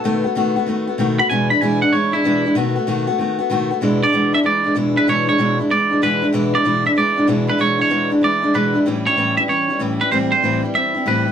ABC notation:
X:1
M:4/4
L:1/16
Q:"Swing" 1/4=191
K:Emix
V:1 name="Clean electric guitar"
A2 z12 b2 | g2 b2 g2 f2 c2 E6 | z16 | z2 d4 e2 d4 z2 B2 |
c2 c4 z2 d4 B3 z | z2 d4 e2 d4 z2 B2 | c2 c4 z2 d4 B3 z | z2 c4 e2 c4 z2 B2 |
=c2 c4 z2 e4 B3 z |]
V:2 name="Steel-string acoustic guitar"
[B,,^D,A,B,F]2 [A,B,F]2 [B,,D,A,B,F]2 [A,B,F]2 [D,A,B,F]2 [A,B,F]2 [B,,D,A,B,F]2 [A,B,F]2 | [E,,B,,E,G,DE]2 [E,G,DE]2 [E,,B,,E,G,DE]2 [E,G,DE]2 [E,G,DE]2 [E,G,DE]2 [E,,B,,E,G,DE]2 [E,G,DE]2 | [B,,^D,A,B,F]2 [A,B,F]2 [B,,D,A,B,F]2 [A,B,F]2 [D,A,B,F]2 [A,B,F]2 [B,,D,A,B,F]2 [A,B,F]2 | [E,,B,,E,G,DE]2 [E,G,DE]2 [E,,B,,E,G,DE]2 [E,G,DE]2 [E,G,DE]2 [E,G,DE]2 [E,,B,,E,G,DE]2 [E,G,DE]2 |
[E,,B,,E,G,DE]2 [E,G,DE]2 [E,,B,,E,G,DE]2 [E,G,DE]2 [E,G,DE]2 [E,G,DE]2 [E,,B,,E,G,DE]2 [E,G,DE]2 | [E,,B,,E,G,DE]2 [E,G,DE]2 [E,,B,,E,G,DE]2 [E,G,DE]2 [E,G,DE]2 [E,G,DE]2 [E,,B,,E,G,DE]2 [E,G,DE]2 | [E,,B,,E,G,DE]2 [E,G,DE]2 [E,,B,,E,G,DE]2 [E,G,DE]2 [E,G,DE]2 [E,G,DE]2 [E,,B,,E,G,DE]2 [E,G,DE]2 | [A,,E,=G,CE]2 [G,CE]2 [A,,E,G,CE]2 [G,CE]2 [E,G,CE]2 [G,CE]2 [A,,E,G,CE]2 [G,CE]2 |
[A,,E,=G,=CE]2 [G,CE]2 [A,,E,G,CE]2 [G,CE]2 [E,G,CE]2 [G,CE]2 [A,,E,G,CE]2 [G,CE]2 |]